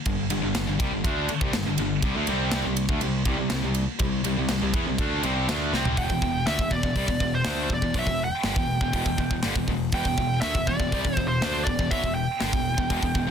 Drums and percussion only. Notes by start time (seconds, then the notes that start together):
0.06 kick, ride
0.30 ride
0.55 snare, ride
0.80 kick, ride
1.04 kick, ride
1.29 ride
1.41 kick
1.53 snare, ride
1.78 ride
2.02 kick, ride
2.27 ride
2.51 snare, ride
2.77 ride
2.89 kick
3.01 ride
3.25 kick, ride
3.50 snare, ride
3.74 ride
3.99 kick, ride
4.24 ride
4.49 snare, ride
4.74 kick, ride
4.98 kick, ride
5.23 ride
5.49 snare, ride
5.74 snare
5.85 floor tom
5.97 kick, open hi-hat
6.10 kick
6.22 kick
6.47 snare, open hi-hat
6.59 kick
6.71 kick
6.83 kick
6.96 kick, open hi-hat
7.08 kick
7.20 kick
7.45 snare, open hi-hat
7.70 kick
7.82 kick
7.94 kick, open hi-hat
8.07 kick
8.43 snare, open hi-hat
8.56 kick
8.81 kick
8.93 kick, open hi-hat
9.06 kick
9.18 kick
9.31 kick
9.43 snare, open hi-hat
9.56 kick
9.68 kick
9.92 kick, open hi-hat
10.05 kick
10.18 kick
10.42 snare, open hi-hat
10.55 kick
10.67 kick
10.80 kick
10.92 kick, open hi-hat
11.05 kick
11.17 kick
11.42 snare, open hi-hat
11.67 kick
11.79 kick
11.91 kick, open hi-hat
12.04 kick
12.41 snare, open hi-hat
12.53 kick
12.78 kick
12.90 kick, open hi-hat
13.03 kick
13.15 kick